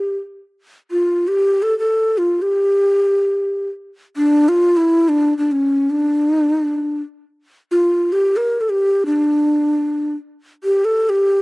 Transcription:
0, 0, Header, 1, 2, 480
1, 0, Start_track
1, 0, Tempo, 500000
1, 10962, End_track
2, 0, Start_track
2, 0, Title_t, "Ney"
2, 0, Program_c, 0, 77
2, 0, Note_on_c, 0, 67, 76
2, 148, Note_off_c, 0, 67, 0
2, 875, Note_on_c, 0, 65, 69
2, 1227, Note_on_c, 0, 67, 75
2, 1241, Note_off_c, 0, 65, 0
2, 1560, Note_on_c, 0, 69, 81
2, 1575, Note_off_c, 0, 67, 0
2, 1710, Note_off_c, 0, 69, 0
2, 1716, Note_on_c, 0, 69, 77
2, 2091, Note_on_c, 0, 65, 72
2, 2105, Note_off_c, 0, 69, 0
2, 2322, Note_on_c, 0, 67, 72
2, 2337, Note_off_c, 0, 65, 0
2, 3526, Note_off_c, 0, 67, 0
2, 4000, Note_on_c, 0, 62, 78
2, 4306, Note_on_c, 0, 65, 79
2, 4320, Note_off_c, 0, 62, 0
2, 4578, Note_on_c, 0, 64, 72
2, 4592, Note_off_c, 0, 65, 0
2, 4884, Note_on_c, 0, 62, 73
2, 4899, Note_off_c, 0, 64, 0
2, 5156, Note_off_c, 0, 62, 0
2, 5162, Note_on_c, 0, 62, 67
2, 5296, Note_on_c, 0, 61, 66
2, 5311, Note_off_c, 0, 62, 0
2, 5667, Note_on_c, 0, 62, 67
2, 5681, Note_off_c, 0, 61, 0
2, 6727, Note_off_c, 0, 62, 0
2, 7404, Note_on_c, 0, 65, 77
2, 7800, Note_on_c, 0, 67, 73
2, 7814, Note_off_c, 0, 65, 0
2, 8032, Note_on_c, 0, 70, 78
2, 8046, Note_off_c, 0, 67, 0
2, 8263, Note_on_c, 0, 69, 56
2, 8277, Note_off_c, 0, 70, 0
2, 8348, Note_on_c, 0, 67, 81
2, 8362, Note_off_c, 0, 69, 0
2, 8678, Note_off_c, 0, 67, 0
2, 8698, Note_on_c, 0, 62, 75
2, 9748, Note_off_c, 0, 62, 0
2, 10212, Note_on_c, 0, 67, 80
2, 10413, Note_on_c, 0, 69, 76
2, 10427, Note_off_c, 0, 67, 0
2, 10650, Note_on_c, 0, 67, 81
2, 10665, Note_off_c, 0, 69, 0
2, 10962, Note_off_c, 0, 67, 0
2, 10962, End_track
0, 0, End_of_file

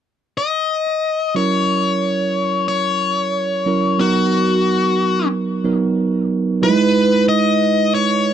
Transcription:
0, 0, Header, 1, 3, 480
1, 0, Start_track
1, 0, Tempo, 659341
1, 989, Time_signature, 4, 2, 24, 8
1, 6068, End_track
2, 0, Start_track
2, 0, Title_t, "Lead electric guitar"
2, 0, Program_c, 0, 29
2, 274, Note_on_c, 0, 75, 92
2, 989, Note_off_c, 0, 75, 0
2, 992, Note_on_c, 0, 73, 90
2, 1944, Note_off_c, 0, 73, 0
2, 1952, Note_on_c, 0, 73, 83
2, 2916, Note_on_c, 0, 66, 69
2, 2939, Note_off_c, 0, 73, 0
2, 3844, Note_off_c, 0, 66, 0
2, 4828, Note_on_c, 0, 71, 92
2, 5279, Note_off_c, 0, 71, 0
2, 5305, Note_on_c, 0, 75, 103
2, 5781, Note_off_c, 0, 75, 0
2, 5784, Note_on_c, 0, 73, 95
2, 6068, Note_off_c, 0, 73, 0
2, 6068, End_track
3, 0, Start_track
3, 0, Title_t, "Tine electric piano"
3, 0, Program_c, 1, 4
3, 980, Note_on_c, 1, 54, 56
3, 986, Note_on_c, 1, 61, 48
3, 991, Note_on_c, 1, 64, 50
3, 995, Note_on_c, 1, 70, 60
3, 1116, Control_c, 1, 64, 127
3, 2636, Note_off_c, 1, 54, 0
3, 2639, Note_off_c, 1, 61, 0
3, 2641, Note_off_c, 1, 64, 0
3, 2643, Note_off_c, 1, 70, 0
3, 2664, Note_on_c, 1, 54, 48
3, 2665, Note_on_c, 1, 61, 46
3, 2669, Note_on_c, 1, 64, 47
3, 2674, Note_on_c, 1, 70, 53
3, 2890, Note_off_c, 1, 54, 0
3, 2899, Note_on_c, 1, 54, 57
3, 2905, Note_on_c, 1, 59, 51
3, 2906, Note_off_c, 1, 70, 0
3, 2907, Note_off_c, 1, 61, 0
3, 2909, Note_off_c, 1, 64, 0
3, 2910, Note_on_c, 1, 63, 50
3, 2915, Note_on_c, 1, 70, 64
3, 2918, Control_c, 1, 64, 0
3, 3043, Control_c, 1, 64, 127
3, 4080, Note_off_c, 1, 54, 0
3, 4083, Note_off_c, 1, 59, 0
3, 4085, Note_off_c, 1, 63, 0
3, 4088, Note_off_c, 1, 70, 0
3, 4105, Note_on_c, 1, 54, 52
3, 4109, Note_on_c, 1, 59, 45
3, 4110, Note_on_c, 1, 63, 47
3, 4116, Note_on_c, 1, 70, 56
3, 4809, Note_off_c, 1, 54, 0
3, 4816, Note_off_c, 1, 63, 0
3, 4818, Note_on_c, 1, 54, 52
3, 4825, Note_on_c, 1, 63, 55
3, 4829, Note_off_c, 1, 59, 0
3, 4831, Note_on_c, 1, 64, 59
3, 4832, Note_off_c, 1, 70, 0
3, 4837, Control_c, 1, 64, 0
3, 4837, Note_on_c, 1, 71, 71
3, 4866, Note_on_c, 1, 56, 66
3, 4871, Note_off_c, 1, 54, 0
3, 4987, Control_c, 1, 64, 127
3, 6068, Note_off_c, 1, 56, 0
3, 6068, Note_off_c, 1, 63, 0
3, 6068, Note_off_c, 1, 64, 0
3, 6068, Note_off_c, 1, 71, 0
3, 6068, End_track
0, 0, End_of_file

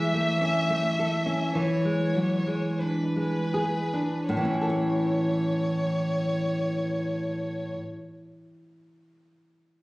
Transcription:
0, 0, Header, 1, 3, 480
1, 0, Start_track
1, 0, Key_signature, 3, "major"
1, 0, Tempo, 1119403
1, 669, Tempo, 1247401
1, 1149, Tempo, 1488834
1, 1628, Time_signature, 4, 2, 24, 8
1, 1629, Tempo, 1401869
1, 3522, End_track
2, 0, Start_track
2, 0, Title_t, "Violin"
2, 0, Program_c, 0, 40
2, 0, Note_on_c, 0, 76, 69
2, 661, Note_off_c, 0, 76, 0
2, 663, Note_on_c, 0, 73, 62
2, 1145, Note_on_c, 0, 71, 44
2, 1150, Note_off_c, 0, 73, 0
2, 1624, Note_off_c, 0, 71, 0
2, 1626, Note_on_c, 0, 73, 46
2, 2806, Note_off_c, 0, 73, 0
2, 3522, End_track
3, 0, Start_track
3, 0, Title_t, "Nylon-string guitar"
3, 0, Program_c, 1, 24
3, 0, Note_on_c, 1, 52, 48
3, 0, Note_on_c, 1, 56, 30
3, 60, Note_off_c, 1, 56, 0
3, 61, Note_on_c, 1, 57, 35
3, 176, Note_on_c, 1, 61, 31
3, 253, Note_off_c, 1, 57, 0
3, 300, Note_on_c, 1, 57, 34
3, 371, Note_off_c, 1, 61, 0
3, 424, Note_on_c, 1, 69, 35
3, 495, Note_off_c, 1, 57, 0
3, 539, Note_on_c, 1, 61, 35
3, 620, Note_off_c, 1, 69, 0
3, 650, Note_off_c, 1, 52, 0
3, 665, Note_on_c, 1, 52, 41
3, 666, Note_off_c, 1, 61, 0
3, 780, Note_on_c, 1, 56, 30
3, 896, Note_on_c, 1, 54, 28
3, 970, Note_off_c, 1, 56, 0
3, 1017, Note_on_c, 1, 56, 34
3, 1019, Note_off_c, 1, 54, 0
3, 1149, Note_on_c, 1, 62, 31
3, 1215, Note_off_c, 1, 56, 0
3, 1262, Note_on_c, 1, 56, 29
3, 1335, Note_off_c, 1, 62, 0
3, 1385, Note_on_c, 1, 68, 34
3, 1460, Note_off_c, 1, 56, 0
3, 1512, Note_on_c, 1, 62, 31
3, 1581, Note_off_c, 1, 68, 0
3, 1614, Note_off_c, 1, 52, 0
3, 1626, Note_on_c, 1, 45, 41
3, 1630, Note_off_c, 1, 62, 0
3, 1654, Note_on_c, 1, 52, 37
3, 1681, Note_on_c, 1, 61, 37
3, 1711, Note_on_c, 1, 64, 33
3, 1738, Note_on_c, 1, 69, 33
3, 1764, Note_off_c, 1, 69, 0
3, 1765, Note_on_c, 1, 73, 37
3, 2806, Note_off_c, 1, 45, 0
3, 2834, Note_off_c, 1, 52, 0
3, 2862, Note_off_c, 1, 61, 0
3, 2891, Note_off_c, 1, 64, 0
3, 2946, Note_off_c, 1, 73, 0
3, 3522, End_track
0, 0, End_of_file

